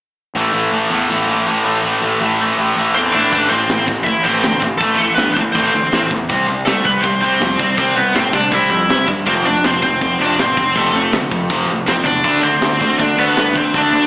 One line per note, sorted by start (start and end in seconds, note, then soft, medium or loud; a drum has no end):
0.35 0.50 A1 medium
0.35 0.53 A2 medium
0.35 0.54 E3 medium
0.35 0.55 A3 medium
0.53 0.69 A1 medium
0.53 0.71 A2 medium
0.53 0.73 E3 medium
0.53 0.73 A3 medium
0.72 0.87 A1 medium
0.72 0.91 A2 medium
0.72 0.91 E3 loud
0.72 0.92 A3 loud
0.90 1.06 E2 medium
0.90 1.09 A2 medium
0.90 1.09 E3 medium
0.90 1.10 A3 medium
1.09 1.25 A1 medium
1.09 1.28 A2 medium
1.09 1.28 E3 medium
1.09 1.29 A3 medium
1.28 1.43 A1 medium
1.28 1.46 A2 medium
1.28 1.46 E3 medium
1.28 1.46 A3 loud
1.46 1.77 A1 medium
1.46 1.64 A2 medium
1.46 1.64 E3 medium
1.46 1.65 A3 medium
1.64 1.83 A2 medium
1.64 1.83 E3 medium
1.64 1.84 A3 medium
1.83 1.98 A1 loud
1.83 2.01 A2 medium
1.83 2.02 E3 medium
1.83 2.02 A3 loud
2.02 2.18 A1 medium
2.02 2.20 A2 medium
2.02 2.20 E3 medium
2.02 2.21 A3 medium
2.21 2.51 A1 loud
2.21 2.39 A2 medium
2.21 2.40 E3 loud
2.21 2.40 A3 loud
2.41 2.57 A2 medium
2.41 2.57 E3 medium
2.41 2.58 A3 loud
2.58 2.73 A1 medium
2.58 2.76 A2 medium
2.58 2.77 E3 medium
2.58 2.77 A3 medium
2.77 2.92 A1 medium
2.77 2.96 A2 loud
2.77 2.96 E3 loud
2.77 2.97 A3 loud
2.94 3.11 E2 medium
2.94 3.13 A2 medium
2.94 3.13 E3 medium
2.94 3.14 A3 medium
2.94 3.13 C4 medium
2.94 3.14 C5 medium
3.12 3.31 A2 medium
3.12 3.29 A2 medium
3.12 3.32 E3 medium
3.12 3.32 A3 medium
3.12 3.48 D4 medium
3.12 3.51 D5 loud
3.33 3.50 A1 medium
3.33 3.50 A2 medium
3.33 3.50 E3 medium
3.33 3.51 A3 medium
3.33 kick loud
3.33 crash loud
3.49 3.68 A1 medium
3.49 3.68 A2 medium
3.49 3.68 E3 medium
3.49 3.86 C4 medium
3.49 3.84 C5 medium
3.49 open hi-hat medium
3.69 3.87 A1 medium
3.69 3.87 A2 medium
3.69 3.87 E3 medium
3.69 snare loud
3.69 open hi-hat medium
3.88 4.05 A1 medium
3.88 4.05 A2 medium
3.88 4.05 E3 medium
3.88 kick medium
3.88 open hi-hat medium
4.04 4.23 A1 medium
4.04 4.23 A2 medium
4.04 4.24 E3 medium
4.04 4.24 E5 medium
4.04 kick loud
4.04 open hi-hat medium
4.08 4.25 E4 medium
4.23 4.42 A1 medium
4.23 4.42 A2 medium
4.23 4.43 E3 medium
4.23 4.43 A3 medium
4.23 4.61 C4 medium
4.23 4.59 C5 medium
4.23 open hi-hat medium
4.43 4.61 D2 medium
4.43 4.61 A2 medium
4.43 4.61 E3 medium
4.43 snare loud
4.43 open hi-hat medium
4.62 4.79 A1 medium
4.62 4.79 A2 medium
4.62 4.80 E3 medium
4.62 kick medium
4.62 open hi-hat medium
4.78 4.98 A1 medium
4.78 4.98 A2 medium
4.78 4.98 A3 medium
4.78 4.95 A4 medium
4.78 kick loud
4.78 open hi-hat medium
4.82 4.99 E3 medium
4.82 4.99 A3 loud
4.96 5.16 A1 medium
4.96 5.16 A2 medium
4.96 5.14 A4 medium
4.96 open hi-hat medium
5.00 5.17 E3 medium
5.00 5.17 A3 medium
5.15 5.35 G2 medium
5.15 5.35 A2 medium
5.15 5.35 E3 medium
5.15 5.35 B3 medium
5.15 5.33 B4 medium
5.15 snare loud
5.15 open hi-hat medium
5.34 5.53 A2 medium
5.34 5.54 A2 medium
5.34 5.53 E3 medium
5.34 5.41 C4 medium
5.34 5.39 C5 medium
5.34 kick medium
5.34 open hi-hat soft
5.52 5.72 A1 medium
5.52 5.72 A2 medium
5.52 5.72 E3 loud
5.52 5.72 A3 loud
5.52 6.07 C4 medium
5.52 6.05 C5 medium
5.52 kick loud
5.52 open hi-hat medium
5.74 5.91 D2 medium
5.74 5.90 A2 medium
5.74 5.91 E3 medium
5.74 open hi-hat medium
5.92 6.09 A2 medium
5.92 6.09 E3 medium
5.92 snare loud
5.92 open hi-hat medium
6.10 6.28 E2 medium
6.10 6.27 A2 medium
6.10 6.27 E3 medium
6.10 kick medium
6.10 open hi-hat medium
6.29 6.47 C2 loud
6.29 6.47 C3 medium
6.29 6.47 G3 medium
6.29 6.47 C4 medium
6.29 kick loud
6.29 open hi-hat medium
6.48 6.65 C2 medium
6.48 6.64 C3 medium
6.48 6.65 G3 medium
6.48 open hi-hat medium
6.65 6.84 C2 loud
6.65 6.82 C3 medium
6.65 6.83 G3 medium
6.65 6.84 A3 medium
6.65 6.85 A4 medium
6.65 snare loud
6.65 open hi-hat medium
6.83 7.02 C2 medium
6.83 7.01 C3 medium
6.83 7.01 G3 medium
6.83 7.02 B3 medium
6.83 7.01 B4 medium
6.83 kick medium
6.83 open hi-hat medium
7.01 7.21 C2 medium
7.01 7.20 C3 medium
7.01 7.20 G3 medium
7.01 7.20 C4 medium
7.01 7.20 C5 medium
7.01 kick loud
7.01 open hi-hat medium
7.21 7.39 C2 medium
7.21 7.40 C3 medium
7.21 7.40 G3 loud
7.21 7.74 C4 medium
7.21 7.40 C4 loud
7.21 7.77 C5 medium
7.21 open hi-hat medium
7.40 7.57 F2 medium
7.40 7.57 C3 medium
7.40 7.57 G3 medium
7.40 snare loud
7.40 open hi-hat medium
7.59 7.77 C2 medium
7.59 7.76 C3 medium
7.59 7.76 G3 medium
7.59 kick medium
7.59 open hi-hat medium
7.78 7.95 C2 medium
7.78 7.95 C3 medium
7.78 7.95 G3 medium
7.78 7.95 C4 medium
7.78 7.96 C4 medium
7.78 7.96 C5 medium
7.78 kick loud
7.78 open hi-hat medium
7.96 8.14 C2 medium
7.96 8.13 C3 medium
7.96 8.13 G3 medium
7.96 8.14 B3 medium
7.96 8.15 B4 medium
7.96 open hi-hat medium
8.15 8.32 A2 medium
8.15 8.32 C3 medium
8.15 8.32 G3 medium
8.15 8.33 C4 medium
8.15 8.34 C5 medium
8.15 snare loud
8.15 open hi-hat medium
8.33 8.51 C3 medium
8.33 8.50 C3 medium
8.33 8.50 G3 medium
8.33 8.52 D4 medium
8.33 8.53 D5 medium
8.33 kick medium
8.33 open hi-hat medium
8.52 8.69 C2 medium
8.52 8.69 C3 medium
8.52 8.69 G3 loud
8.52 8.70 C4 medium
8.52 9.05 E4 medium
8.52 9.09 E5 loud
8.52 kick loud
8.52 open hi-hat medium
8.70 8.88 F2 medium
8.70 8.87 C3 medium
8.70 8.87 G3 medium
8.70 open hi-hat medium
8.89 9.06 C3 medium
8.89 9.07 G3 medium
8.89 snare loud
8.89 open hi-hat medium
9.08 9.25 G2 medium
9.08 9.25 C3 medium
9.08 9.25 G3 medium
9.08 kick medium
9.08 open hi-hat medium
9.26 9.44 F1 medium
9.26 9.44 F2 medium
9.26 9.44 C3 medium
9.26 9.44 F3 loud
9.26 9.44 C4 medium
9.26 9.45 C5 loud
9.26 kick loud
9.26 open hi-hat medium
9.45 9.63 F1 medium
9.45 9.62 F2 medium
9.45 9.62 C3 medium
9.45 9.63 D4 medium
9.45 9.64 D5 medium
9.45 open hi-hat medium
9.64 9.81 F1 medium
9.64 9.81 F2 medium
9.64 9.81 C3 medium
9.64 9.81 C4 medium
9.64 9.81 C5 medium
9.64 snare loud
9.64 open hi-hat medium
9.82 10.00 F1 medium
9.82 9.99 F2 medium
9.82 9.99 C3 medium
9.82 10.17 C4 medium
9.82 10.21 C5 medium
9.82 kick medium
9.82 open hi-hat medium
10.01 10.18 F1 medium
10.01 10.18 F2 medium
10.01 10.18 C3 medium
10.01 kick loud
10.01 open hi-hat medium
10.20 10.37 F1 medium
10.20 10.38 F2 medium
10.20 10.38 C3 medium
10.20 10.38 F3 loud
10.20 10.38 D4 medium
10.20 10.38 D5 medium
10.20 open hi-hat medium
10.38 10.55 A1 medium
10.38 10.55 F2 medium
10.38 10.56 C3 medium
10.38 10.74 C4 medium
10.38 10.78 C5 medium
10.38 snare loud
10.38 open hi-hat medium
10.57 10.74 F1 medium
10.57 10.74 F2 medium
10.57 10.75 C3 medium
10.57 kick medium
10.57 open hi-hat medium
10.76 10.93 F1 loud
10.76 10.94 F2 medium
10.76 10.94 C3 medium
10.76 10.94 F3 loud
10.76 11.11 A3 medium
10.76 11.11 A4 medium
10.76 kick loud
10.76 open hi-hat medium
10.93 11.11 F1 medium
10.93 11.12 F2 medium
10.93 11.12 C3 medium
10.93 open hi-hat medium
11.12 11.30 D2 medium
11.12 11.30 F2 medium
11.12 11.30 C3 medium
11.12 snare loud
11.12 open hi-hat medium
11.31 11.49 F2 medium
11.31 11.49 C3 medium
11.31 kick medium
11.31 open hi-hat medium
11.50 11.66 F1 medium
11.50 11.68 F2 loud
11.50 11.68 C3 loud
11.50 11.68 F3 loud
11.50 kick loud
11.50 open hi-hat medium
11.67 11.85 A1 loud
11.67 11.86 F2 medium
11.67 11.86 C3 medium
11.67 open hi-hat medium
11.87 12.04 F2 loud
11.87 12.04 F2 medium
11.87 12.05 C3 medium
11.87 12.04 C4 medium
11.87 12.05 C5 medium
11.87 snare loud
11.87 open hi-hat medium
12.04 12.23 E2 medium
12.04 12.23 F2 medium
12.04 12.23 C3 medium
12.04 12.40 D4 medium
12.04 12.44 D5 medium
12.04 kick medium
12.04 open hi-hat medium
12.24 12.42 D2 loud
12.24 12.42 D3 medium
12.24 12.43 A3 medium
12.24 12.43 D4 medium
12.24 kick loud
12.24 open hi-hat medium
12.42 12.60 D2 medium
12.42 12.61 D3 medium
12.42 12.61 A3 medium
12.42 12.96 C4 medium
12.42 12.99 C5 medium
12.42 open hi-hat medium
12.61 12.79 D2 medium
12.61 12.79 D3 medium
12.61 12.80 A3 medium
12.61 snare loud
12.61 open hi-hat medium
12.81 12.98 D2 medium
12.81 12.98 D3 medium
12.81 12.98 A3 medium
12.81 kick medium
12.81 open hi-hat medium
12.99 13.16 D2 medium
12.99 13.16 D3 medium
12.99 13.16 A3 medium
12.99 13.17 D4 medium
12.99 13.19 D5 medium
12.99 kick loud
12.99 open hi-hat medium
13.17 13.35 D2 medium
13.17 13.36 D3 medium
13.17 13.36 A3 medium
13.17 13.53 B3 medium
13.17 13.37 D4 loud
13.17 13.57 B4 medium
13.17 open hi-hat medium
13.36 13.54 G2 medium
13.36 13.54 D3 medium
13.36 13.54 A3 medium
13.36 snare loud
13.36 open hi-hat medium
13.55 13.72 D2 medium
13.55 13.73 D3 medium
13.55 13.73 A3 medium
13.55 13.73 C4 medium
13.55 13.76 C5 medium
13.55 kick medium
13.55 open hi-hat medium
13.74 13.91 D2 medium
13.74 13.92 D3 medium
13.74 13.92 A3 medium
13.74 13.92 D4 medium
13.74 14.07 D4 medium
13.74 14.07 D5 loud
13.74 kick loud
13.74 open hi-hat medium
13.93 14.07 D2 medium
13.93 14.07 D3 medium
13.93 14.07 A3 medium
13.93 open hi-hat medium